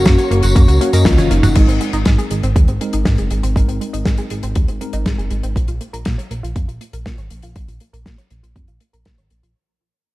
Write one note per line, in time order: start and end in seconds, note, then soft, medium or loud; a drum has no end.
0.00 0.78 A#3 medium
0.00 0.78 C#4 medium
0.00 0.78 F#4 medium
0.00 0.80 F#4 loud
0.00 1.52 A#4 medium
0.00 0.78 C#5 loud
0.00 1.52 C#5 medium
0.00 1.52 A#5 medium
0.00 1.52 C#6 medium
0.06 0.17 F#2 loud
0.06 0.18 A#3 loud
0.06 kick loud
0.06 snare loud
0.06 closed hi-hat loud
0.18 0.23 C#5 medium
0.18 closed hi-hat medium
0.18 tambourine soft
0.31 0.42 F#1 loud
0.31 0.39 A#3 medium
0.31 closed hi-hat medium
0.43 0.54 F#1 medium
0.43 0.55 F#4 loud
0.43 closed hi-hat medium
0.43 tambourine medium
0.56 0.67 F#2 loud
0.56 0.64 A#3 medium
0.56 kick loud
0.56 closed hi-hat loud
0.56 tambourine medium
0.68 0.79 C#2 medium
0.68 0.80 F#4 medium
0.68 closed hi-hat medium
0.68 tambourine soft
0.81 0.90 A#3 medium
0.81 0.89 A#3 medium
0.81 0.90 C#4 medium
0.81 0.90 F#4 medium
0.81 1.07 F#4 loud
0.81 0.90 C#5 medium
0.81 closed hi-hat medium
0.93 1.04 F#2 medium
0.93 1.53 A#3 loud
0.93 1.53 C#4 medium
0.93 1.53 F#4 medium
0.93 1.01 A#4 loud
0.93 1.53 D#5 loud
0.93 closed hi-hat medium
0.93 tambourine medium
1.05 1.17 C#2 loud
1.05 1.18 A#3 loud
1.05 1.33 F4 medium
1.05 kick loud
1.05 snare loud
1.05 closed hi-hat loud
1.05 high tom medium
1.18 1.29 F#1 medium
1.18 1.23 C#5 medium
1.18 closed hi-hat medium
1.18 high tom medium
1.18 tambourine soft
1.31 1.42 F#1 medium
1.31 1.39 A#3 medium
1.31 2.06 D#4 medium
1.31 closed hi-hat medium
1.43 1.54 F#1 medium
1.43 1.55 F#4 loud
1.43 closed hi-hat medium
1.43 mid tom medium
1.43 tambourine medium
1.55 1.67 G#1 loud
1.55 1.64 G#3 medium
1.55 2.78 G#3 medium
1.55 2.78 C4 medium
1.55 2.78 D#4 medium
1.55 2.78 A#4 loud
1.55 kick loud
1.55 closed hi-hat loud
1.55 crash medium
1.68 1.79 G#1 medium
1.68 1.80 C4 medium
1.68 closed hi-hat medium
1.81 1.89 G#3 medium
1.81 closed hi-hat soft
1.93 2.04 G#1 medium
1.93 2.01 D#4 loud
1.93 closed hi-hat medium
2.05 2.17 G#2 loud
2.05 2.18 G#3 loud
2.05 kick loud
2.05 snare loud
2.05 closed hi-hat loud
2.18 2.23 G#4 medium
2.18 closed hi-hat medium
2.31 2.42 G#1 medium
2.31 2.39 G#3 medium
2.31 closed hi-hat medium
2.43 2.54 G#1 medium
2.43 2.55 C4 loud
2.43 closed hi-hat medium
2.56 2.67 D#2 loud
2.56 2.64 G#3 medium
2.56 kick loud
2.56 closed hi-hat loud
2.68 2.79 G#1 medium
2.68 2.80 C4 medium
2.68 closed hi-hat medium
2.81 3.53 G#3 medium
2.81 2.89 G#3 medium
2.81 3.53 C4 medium
2.81 3.53 D#4 medium
2.81 3.53 A#4 medium
2.81 closed hi-hat medium
2.93 3.04 G#1 medium
2.93 3.01 D#4 loud
2.93 closed hi-hat medium
3.05 3.17 G#2 loud
3.05 3.18 G#3 loud
3.05 kick loud
3.05 snare loud
3.05 closed hi-hat medium
3.18 3.29 F#1 medium
3.18 3.23 G#4 medium
3.18 closed hi-hat medium
3.30 3.42 G#1 medium
3.30 3.39 G#3 medium
3.30 closed hi-hat medium
3.43 3.54 G#1 medium
3.43 3.55 C4 loud
3.43 closed hi-hat medium
3.56 3.67 G#1 loud
3.56 3.64 G#3 medium
3.56 4.78 G#3 medium
3.56 4.78 C4 medium
3.56 4.78 D#4 medium
3.56 4.78 A#4 medium
3.56 kick loud
3.56 closed hi-hat medium
3.68 3.79 G#1 medium
3.68 3.80 C4 medium
3.68 closed hi-hat medium
3.81 3.89 G#3 medium
3.81 closed hi-hat medium
3.93 4.04 G#1 medium
3.93 4.01 D#4 loud
3.93 closed hi-hat soft
4.05 4.17 G#2 medium
4.05 4.18 G#3 loud
4.05 kick loud
4.05 snare loud
4.05 closed hi-hat medium
4.18 4.23 G#4 medium
4.18 closed hi-hat medium
4.30 4.42 G#1 medium
4.30 4.39 G#3 medium
4.30 closed hi-hat medium
4.43 4.54 G#1 medium
4.43 4.55 C4 medium
4.43 closed hi-hat medium
4.55 4.67 D#2 loud
4.55 4.64 G#3 medium
4.55 kick loud
4.55 closed hi-hat medium
4.68 4.79 G#1 medium
4.68 4.80 C4 medium
4.68 closed hi-hat medium
4.81 4.89 G#3 medium
4.81 5.53 G#3 medium
4.81 5.53 C4 medium
4.81 5.53 D#4 medium
4.81 5.53 A#4 medium
4.81 closed hi-hat medium
4.93 5.04 G#1 medium
4.93 5.01 D#4 loud
4.93 closed hi-hat medium
5.06 5.17 G#2 loud
5.06 5.18 G#3 loud
5.06 kick loud
5.06 snare loud
5.06 closed hi-hat loud
5.18 5.29 F#1 medium
5.18 5.23 G#4 medium
5.18 closed hi-hat medium
5.30 5.42 G#1 medium
5.30 5.39 G#3 medium
5.30 closed hi-hat medium
5.43 5.54 G#1 medium
5.43 5.55 C4 loud
5.43 closed hi-hat medium
5.56 5.67 A#1 loud
5.56 5.64 A#3 medium
5.56 kick loud
5.56 closed hi-hat loud
5.68 5.80 A#1 medium
5.68 5.80 F4 medium
5.68 closed hi-hat medium
5.81 5.89 A#3 medium
5.81 closed hi-hat soft
5.93 6.04 A#1 medium
5.93 6.01 A#4 loud
5.93 closed hi-hat soft
6.05 6.17 A#2 loud
6.05 6.18 A#3 loud
6.05 kick loud
6.05 snare loud
6.05 closed hi-hat medium
6.18 6.23 C#5 medium
6.18 closed hi-hat soft
6.31 6.42 A#1 medium
6.31 6.39 A#3 medium
6.31 closed hi-hat medium
6.43 6.54 A#1 medium
6.43 6.55 F4 medium
6.43 closed hi-hat medium
6.56 6.67 F2 medium
6.56 6.64 A#3 medium
6.56 kick loud
6.56 closed hi-hat medium
6.68 6.79 A#1 medium
6.68 6.80 F4 medium
6.68 closed hi-hat soft
6.81 6.89 A#3 medium
6.81 closed hi-hat medium
6.93 7.04 A#1 medium
6.93 7.01 A#4 loud
6.93 closed hi-hat soft
7.06 7.17 A#2 medium
7.06 7.18 A#3 loud
7.06 kick loud
7.06 snare loud
7.06 closed hi-hat medium
7.18 7.29 G#1 medium
7.18 7.23 C#5 medium
7.18 closed hi-hat medium
7.30 7.42 A#1 medium
7.30 7.39 A#3 medium
7.30 closed hi-hat medium
7.42 7.54 A#1 medium
7.42 7.55 F4 medium
7.42 closed hi-hat soft
7.56 7.67 A#1 medium
7.56 7.64 A#3 medium
7.56 kick loud
7.56 closed hi-hat medium
7.68 7.79 A#1 medium
7.68 7.80 F4 medium
7.68 closed hi-hat medium
7.80 7.89 A#3 medium
7.80 closed hi-hat medium
7.93 8.04 A#1 medium
7.93 8.01 A#4 medium
7.93 closed hi-hat soft
8.06 8.17 A#2 medium
8.06 8.18 A#3 loud
8.06 kick loud
8.06 snare loud
8.06 closed hi-hat medium
8.18 8.23 C#5 medium
8.18 closed hi-hat medium
8.30 8.42 A#1 medium
8.30 8.39 A#3 medium
8.30 closed hi-hat medium
8.43 8.54 A#1 medium
8.43 8.55 F4 medium
8.43 closed hi-hat soft
8.56 8.67 F2 medium
8.56 8.64 A#3 medium
8.56 kick loud
8.56 closed hi-hat medium
8.68 8.79 A#1 medium
8.68 8.80 F4 medium
8.68 closed hi-hat soft
8.80 8.89 A#3 medium
8.80 closed hi-hat medium
8.93 9.04 A#1 medium
8.93 9.01 A#4 medium
8.93 closed hi-hat medium
9.05 9.17 A#2 loud
9.05 9.18 A#3 loud
9.05 kick loud
9.05 snare loud
9.05 closed hi-hat medium
9.18 9.29 G#1 medium
9.18 9.23 C#5 medium
9.18 closed hi-hat soft
9.30 9.42 A#1 medium
9.30 9.39 A#3 medium
9.30 closed hi-hat medium
9.43 9.54 A#1 medium
9.43 9.55 F4 medium
9.43 closed hi-hat soft